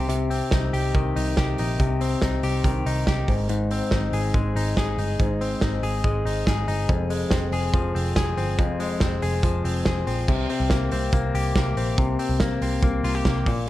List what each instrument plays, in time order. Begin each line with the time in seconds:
Already playing: picked electric bass C2, clean electric guitar D#3 C4 G4
0.09 clean electric guitar C3, closed hi-hat
0.30 clean electric guitar C4, open hi-hat
0.51 picked electric bass C2, clean electric guitar D#4, kick, snare, closed hi-hat
0.73 picked electric bass C2, clean electric guitar G4, open hi-hat
0.95 picked electric bass C2, clean electric guitar D#3, kick, closed hi-hat
1.16 picked electric bass C2, clean electric guitar D#4, open hi-hat
1.37 picked electric bass C2, clean electric guitar G4, kick, snare, closed hi-hat
1.58 picked electric bass A#1, clean electric guitar D#4, open hi-hat
1.80 picked electric bass C2, clean electric guitar C3, kick, closed hi-hat
2.01 clean electric guitar C4, open hi-hat
2.22 picked electric bass C2, clean electric guitar D#4, kick, snare, closed hi-hat
2.43 picked electric bass C2, clean electric guitar G4, open hi-hat
2.64 picked electric bass C2, clean electric guitar D#3, kick, closed hi-hat
2.85 picked electric bass C2, clean electric guitar D#4, open hi-hat
3.07 picked electric bass C2, clean electric guitar G4, kick, snare, closed hi-hat
3.28 picked electric bass G#1, clean electric guitar G#2, kick, open hi-hat
3.49 clean electric guitar G#2, closed hi-hat
3.71 clean electric guitar C4, open hi-hat
3.91 picked electric bass G#1, clean electric guitar D#4, kick, snare
4.13 picked electric bass G#1, clean electric guitar G#4, open hi-hat
4.34 picked electric bass G#1, clean electric guitar G#3, kick
4.55 picked electric bass G#1, clean electric guitar D#4, open hi-hat
4.77 picked electric bass G#1, clean electric guitar G#4, kick, snare, closed hi-hat
4.98 picked electric bass G1, clean electric guitar D#4, open hi-hat
5.20 picked electric bass G#1, clean electric guitar G#2, kick, closed hi-hat
5.41 clean electric guitar C4, open hi-hat
5.61 picked electric bass G#1, clean electric guitar D#4, kick, snare, closed hi-hat
5.83 picked electric bass G#1, clean electric guitar G#4, open hi-hat
6.04 picked electric bass G#1, clean electric guitar G#3, kick, closed hi-hat
6.25 picked electric bass G#1, clean electric guitar D#4, open hi-hat
6.47 picked electric bass G#1, clean electric guitar G#4, kick, snare, closed hi-hat
6.68 picked electric bass G1, clean electric guitar D#4, open hi-hat
6.89 picked electric bass F1, clean electric guitar F2, kick, closed hi-hat
7.10 clean electric guitar G#3, open hi-hat
7.31 picked electric bass F1, clean electric guitar C4, kick, snare, closed hi-hat
7.52 picked electric bass F1, clean electric guitar G#4, open hi-hat
7.74 picked electric bass F1, clean electric guitar F3, kick, closed hi-hat
7.95 picked electric bass F1, clean electric guitar C4, open hi-hat
8.16 picked electric bass F1, clean electric guitar G#4, kick, snare, closed hi-hat
8.37 picked electric bass G1, clean electric guitar C4, open hi-hat
8.58 picked electric bass F1, clean electric guitar F2, kick, closed hi-hat
8.80 clean electric guitar G#3, open hi-hat
9.00 picked electric bass F1, clean electric guitar C4, kick, snare, closed hi-hat
9.22 picked electric bass F1, clean electric guitar G#4, open hi-hat
9.43 picked electric bass F1, clean electric guitar F3, kick, closed hi-hat
9.64 picked electric bass F1, clean electric guitar C4, open hi-hat
9.85 picked electric bass F1, clean electric guitar G#4, kick, snare, closed hi-hat
10.07 picked electric bass A#1, clean electric guitar C4, open hi-hat
10.28 picked electric bass C2, clean electric guitar C3, kick, crash
10.50 clean electric guitar C4, open hi-hat
10.60 picked electric bass C2
10.70 picked electric bass C2, clean electric guitar A#3, kick, snare, closed hi-hat
10.91 picked electric bass C2, clean electric guitar C4, open hi-hat
11.13 picked electric bass C2, clean electric guitar A#3, kick, closed hi-hat
11.34 picked electric bass C2, clean electric guitar G4, open hi-hat
11.56 picked electric bass C2, clean electric guitar A#3, kick, snare, closed hi-hat
11.76 picked electric bass A#1, clean electric guitar C4, open hi-hat
11.98 picked electric bass C2, clean electric guitar C3, kick, closed hi-hat
12.19 clean electric guitar C4, open hi-hat
12.29 picked electric bass C2
12.40 picked electric bass C2, clean electric guitar A#3, kick, snare, closed hi-hat
12.61 picked electric bass C2, clean electric guitar C4, open hi-hat
12.83 picked electric bass C2, clean electric guitar A#3, kick, closed hi-hat
13.04 picked electric bass C2, clean electric guitar F4, open hi-hat
13.15 clean electric guitar G4
13.25 picked electric bass C2, clean electric guitar A#3, kick, snare, closed hi-hat
13.46 picked electric bass A#1, clean electric guitar A#2, kick, open hi-hat